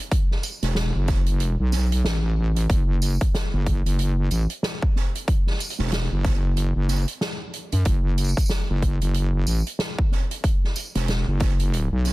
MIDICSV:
0, 0, Header, 1, 3, 480
1, 0, Start_track
1, 0, Key_signature, 3, "minor"
1, 0, Tempo, 645161
1, 86, Time_signature, 4, 2, 24, 8
1, 9023, End_track
2, 0, Start_track
2, 0, Title_t, "Wobble bass"
2, 0, Program_c, 0, 39
2, 466, Note_on_c, 0, 28, 98
2, 684, Note_off_c, 0, 28, 0
2, 704, Note_on_c, 0, 30, 98
2, 1032, Note_off_c, 0, 30, 0
2, 1032, Note_on_c, 0, 29, 98
2, 1164, Note_off_c, 0, 29, 0
2, 1187, Note_on_c, 0, 35, 101
2, 1509, Note_off_c, 0, 35, 0
2, 1525, Note_on_c, 0, 33, 93
2, 1990, Note_off_c, 0, 33, 0
2, 2005, Note_on_c, 0, 30, 98
2, 2366, Note_off_c, 0, 30, 0
2, 2630, Note_on_c, 0, 30, 97
2, 2846, Note_off_c, 0, 30, 0
2, 2868, Note_on_c, 0, 30, 98
2, 3190, Note_off_c, 0, 30, 0
2, 3207, Note_on_c, 0, 33, 98
2, 3326, Note_off_c, 0, 33, 0
2, 4310, Note_on_c, 0, 28, 97
2, 4526, Note_off_c, 0, 28, 0
2, 4550, Note_on_c, 0, 30, 98
2, 5007, Note_off_c, 0, 30, 0
2, 5028, Note_on_c, 0, 30, 98
2, 5245, Note_off_c, 0, 30, 0
2, 5748, Note_on_c, 0, 42, 97
2, 5830, Note_off_c, 0, 42, 0
2, 5845, Note_on_c, 0, 30, 99
2, 6205, Note_off_c, 0, 30, 0
2, 6472, Note_on_c, 0, 30, 98
2, 6687, Note_off_c, 0, 30, 0
2, 6710, Note_on_c, 0, 30, 96
2, 7031, Note_off_c, 0, 30, 0
2, 7045, Note_on_c, 0, 33, 98
2, 7165, Note_off_c, 0, 33, 0
2, 8149, Note_on_c, 0, 28, 96
2, 8366, Note_off_c, 0, 28, 0
2, 8388, Note_on_c, 0, 30, 97
2, 8845, Note_off_c, 0, 30, 0
2, 8870, Note_on_c, 0, 35, 101
2, 9023, Note_off_c, 0, 35, 0
2, 9023, End_track
3, 0, Start_track
3, 0, Title_t, "Drums"
3, 86, Note_on_c, 9, 36, 122
3, 87, Note_on_c, 9, 42, 86
3, 160, Note_off_c, 9, 36, 0
3, 162, Note_off_c, 9, 42, 0
3, 231, Note_on_c, 9, 38, 40
3, 306, Note_off_c, 9, 38, 0
3, 322, Note_on_c, 9, 42, 74
3, 322, Note_on_c, 9, 54, 66
3, 396, Note_off_c, 9, 42, 0
3, 397, Note_off_c, 9, 54, 0
3, 465, Note_on_c, 9, 42, 63
3, 467, Note_on_c, 9, 40, 49
3, 540, Note_off_c, 9, 42, 0
3, 541, Note_off_c, 9, 40, 0
3, 559, Note_on_c, 9, 38, 127
3, 567, Note_on_c, 9, 42, 80
3, 633, Note_off_c, 9, 38, 0
3, 642, Note_off_c, 9, 42, 0
3, 801, Note_on_c, 9, 42, 53
3, 802, Note_on_c, 9, 40, 54
3, 806, Note_on_c, 9, 36, 114
3, 876, Note_off_c, 9, 42, 0
3, 877, Note_off_c, 9, 40, 0
3, 881, Note_off_c, 9, 36, 0
3, 940, Note_on_c, 9, 42, 67
3, 1014, Note_off_c, 9, 42, 0
3, 1042, Note_on_c, 9, 42, 85
3, 1116, Note_off_c, 9, 42, 0
3, 1281, Note_on_c, 9, 40, 41
3, 1282, Note_on_c, 9, 54, 65
3, 1285, Note_on_c, 9, 42, 59
3, 1355, Note_off_c, 9, 40, 0
3, 1356, Note_off_c, 9, 54, 0
3, 1360, Note_off_c, 9, 42, 0
3, 1428, Note_on_c, 9, 42, 72
3, 1503, Note_off_c, 9, 42, 0
3, 1521, Note_on_c, 9, 38, 127
3, 1528, Note_on_c, 9, 42, 75
3, 1595, Note_off_c, 9, 38, 0
3, 1603, Note_off_c, 9, 42, 0
3, 1907, Note_on_c, 9, 42, 64
3, 1981, Note_off_c, 9, 42, 0
3, 2006, Note_on_c, 9, 36, 127
3, 2010, Note_on_c, 9, 42, 78
3, 2081, Note_off_c, 9, 36, 0
3, 2085, Note_off_c, 9, 42, 0
3, 2245, Note_on_c, 9, 54, 63
3, 2250, Note_on_c, 9, 42, 69
3, 2319, Note_off_c, 9, 54, 0
3, 2324, Note_off_c, 9, 42, 0
3, 2387, Note_on_c, 9, 42, 61
3, 2389, Note_on_c, 9, 36, 110
3, 2461, Note_off_c, 9, 42, 0
3, 2464, Note_off_c, 9, 36, 0
3, 2488, Note_on_c, 9, 38, 127
3, 2489, Note_on_c, 9, 42, 87
3, 2563, Note_off_c, 9, 38, 0
3, 2564, Note_off_c, 9, 42, 0
3, 2725, Note_on_c, 9, 42, 54
3, 2727, Note_on_c, 9, 36, 67
3, 2800, Note_off_c, 9, 42, 0
3, 2801, Note_off_c, 9, 36, 0
3, 2873, Note_on_c, 9, 42, 66
3, 2948, Note_off_c, 9, 42, 0
3, 2967, Note_on_c, 9, 42, 80
3, 3042, Note_off_c, 9, 42, 0
3, 3205, Note_on_c, 9, 42, 60
3, 3208, Note_on_c, 9, 54, 65
3, 3279, Note_off_c, 9, 42, 0
3, 3283, Note_off_c, 9, 54, 0
3, 3346, Note_on_c, 9, 42, 66
3, 3421, Note_off_c, 9, 42, 0
3, 3444, Note_on_c, 9, 38, 121
3, 3453, Note_on_c, 9, 42, 74
3, 3519, Note_off_c, 9, 38, 0
3, 3527, Note_off_c, 9, 42, 0
3, 3590, Note_on_c, 9, 36, 111
3, 3664, Note_off_c, 9, 36, 0
3, 3689, Note_on_c, 9, 40, 38
3, 3764, Note_off_c, 9, 40, 0
3, 3835, Note_on_c, 9, 42, 64
3, 3909, Note_off_c, 9, 42, 0
3, 3927, Note_on_c, 9, 36, 125
3, 3928, Note_on_c, 9, 42, 76
3, 4002, Note_off_c, 9, 36, 0
3, 4003, Note_off_c, 9, 42, 0
3, 4068, Note_on_c, 9, 38, 36
3, 4093, Note_off_c, 9, 38, 0
3, 4093, Note_on_c, 9, 38, 31
3, 4118, Note_off_c, 9, 38, 0
3, 4118, Note_on_c, 9, 38, 24
3, 4141, Note_off_c, 9, 38, 0
3, 4141, Note_on_c, 9, 38, 21
3, 4164, Note_off_c, 9, 38, 0
3, 4164, Note_on_c, 9, 38, 16
3, 4167, Note_on_c, 9, 42, 68
3, 4172, Note_on_c, 9, 54, 63
3, 4198, Note_off_c, 9, 38, 0
3, 4198, Note_on_c, 9, 38, 14
3, 4233, Note_off_c, 9, 38, 0
3, 4233, Note_on_c, 9, 38, 11
3, 4241, Note_off_c, 9, 42, 0
3, 4242, Note_on_c, 9, 42, 72
3, 4246, Note_off_c, 9, 54, 0
3, 4269, Note_off_c, 9, 38, 0
3, 4269, Note_on_c, 9, 38, 9
3, 4304, Note_on_c, 9, 40, 43
3, 4316, Note_off_c, 9, 42, 0
3, 4343, Note_off_c, 9, 38, 0
3, 4367, Note_off_c, 9, 40, 0
3, 4367, Note_on_c, 9, 40, 34
3, 4402, Note_on_c, 9, 42, 85
3, 4409, Note_on_c, 9, 38, 127
3, 4441, Note_off_c, 9, 40, 0
3, 4447, Note_on_c, 9, 40, 30
3, 4476, Note_off_c, 9, 42, 0
3, 4483, Note_off_c, 9, 38, 0
3, 4522, Note_off_c, 9, 40, 0
3, 4647, Note_on_c, 9, 36, 112
3, 4647, Note_on_c, 9, 40, 51
3, 4647, Note_on_c, 9, 42, 51
3, 4721, Note_off_c, 9, 36, 0
3, 4721, Note_off_c, 9, 42, 0
3, 4722, Note_off_c, 9, 40, 0
3, 4886, Note_on_c, 9, 42, 77
3, 4960, Note_off_c, 9, 42, 0
3, 5121, Note_on_c, 9, 40, 38
3, 5125, Note_on_c, 9, 42, 49
3, 5127, Note_on_c, 9, 54, 60
3, 5195, Note_off_c, 9, 40, 0
3, 5199, Note_off_c, 9, 42, 0
3, 5201, Note_off_c, 9, 54, 0
3, 5266, Note_on_c, 9, 42, 64
3, 5340, Note_off_c, 9, 42, 0
3, 5365, Note_on_c, 9, 38, 120
3, 5368, Note_on_c, 9, 42, 72
3, 5439, Note_off_c, 9, 38, 0
3, 5442, Note_off_c, 9, 42, 0
3, 5606, Note_on_c, 9, 42, 53
3, 5681, Note_off_c, 9, 42, 0
3, 5746, Note_on_c, 9, 42, 64
3, 5820, Note_off_c, 9, 42, 0
3, 5840, Note_on_c, 9, 42, 79
3, 5845, Note_on_c, 9, 36, 118
3, 5915, Note_off_c, 9, 42, 0
3, 5920, Note_off_c, 9, 36, 0
3, 6084, Note_on_c, 9, 42, 69
3, 6084, Note_on_c, 9, 54, 30
3, 6133, Note_off_c, 9, 54, 0
3, 6133, Note_on_c, 9, 54, 35
3, 6158, Note_off_c, 9, 42, 0
3, 6167, Note_off_c, 9, 54, 0
3, 6167, Note_on_c, 9, 54, 41
3, 6228, Note_on_c, 9, 36, 104
3, 6231, Note_off_c, 9, 54, 0
3, 6231, Note_on_c, 9, 54, 44
3, 6235, Note_on_c, 9, 42, 59
3, 6248, Note_off_c, 9, 54, 0
3, 6248, Note_on_c, 9, 54, 50
3, 6292, Note_off_c, 9, 54, 0
3, 6292, Note_on_c, 9, 54, 55
3, 6303, Note_off_c, 9, 36, 0
3, 6309, Note_off_c, 9, 42, 0
3, 6320, Note_on_c, 9, 38, 116
3, 6322, Note_on_c, 9, 42, 82
3, 6366, Note_off_c, 9, 54, 0
3, 6394, Note_off_c, 9, 38, 0
3, 6397, Note_off_c, 9, 42, 0
3, 6565, Note_on_c, 9, 36, 62
3, 6565, Note_on_c, 9, 42, 51
3, 6640, Note_off_c, 9, 36, 0
3, 6640, Note_off_c, 9, 42, 0
3, 6707, Note_on_c, 9, 42, 62
3, 6781, Note_off_c, 9, 42, 0
3, 6802, Note_on_c, 9, 42, 76
3, 6877, Note_off_c, 9, 42, 0
3, 7043, Note_on_c, 9, 54, 67
3, 7050, Note_on_c, 9, 42, 50
3, 7117, Note_off_c, 9, 54, 0
3, 7125, Note_off_c, 9, 42, 0
3, 7192, Note_on_c, 9, 42, 58
3, 7266, Note_off_c, 9, 42, 0
3, 7282, Note_on_c, 9, 38, 125
3, 7289, Note_on_c, 9, 42, 75
3, 7357, Note_off_c, 9, 38, 0
3, 7363, Note_off_c, 9, 42, 0
3, 7429, Note_on_c, 9, 36, 106
3, 7503, Note_off_c, 9, 36, 0
3, 7527, Note_on_c, 9, 40, 34
3, 7601, Note_off_c, 9, 40, 0
3, 7671, Note_on_c, 9, 42, 69
3, 7745, Note_off_c, 9, 42, 0
3, 7766, Note_on_c, 9, 36, 118
3, 7768, Note_on_c, 9, 42, 76
3, 7840, Note_off_c, 9, 36, 0
3, 7843, Note_off_c, 9, 42, 0
3, 7917, Note_on_c, 9, 38, 33
3, 7991, Note_off_c, 9, 38, 0
3, 8003, Note_on_c, 9, 54, 68
3, 8008, Note_on_c, 9, 42, 74
3, 8077, Note_off_c, 9, 54, 0
3, 8082, Note_off_c, 9, 42, 0
3, 8149, Note_on_c, 9, 42, 63
3, 8152, Note_on_c, 9, 40, 52
3, 8223, Note_off_c, 9, 42, 0
3, 8226, Note_off_c, 9, 40, 0
3, 8244, Note_on_c, 9, 42, 80
3, 8249, Note_on_c, 9, 38, 108
3, 8318, Note_off_c, 9, 42, 0
3, 8323, Note_off_c, 9, 38, 0
3, 8482, Note_on_c, 9, 42, 53
3, 8486, Note_on_c, 9, 36, 105
3, 8489, Note_on_c, 9, 40, 51
3, 8556, Note_off_c, 9, 42, 0
3, 8561, Note_off_c, 9, 36, 0
3, 8563, Note_off_c, 9, 40, 0
3, 8627, Note_on_c, 9, 42, 67
3, 8701, Note_off_c, 9, 42, 0
3, 8730, Note_on_c, 9, 42, 73
3, 8805, Note_off_c, 9, 42, 0
3, 8963, Note_on_c, 9, 42, 53
3, 8970, Note_on_c, 9, 40, 36
3, 8970, Note_on_c, 9, 54, 62
3, 9023, Note_off_c, 9, 40, 0
3, 9023, Note_off_c, 9, 42, 0
3, 9023, Note_off_c, 9, 54, 0
3, 9023, End_track
0, 0, End_of_file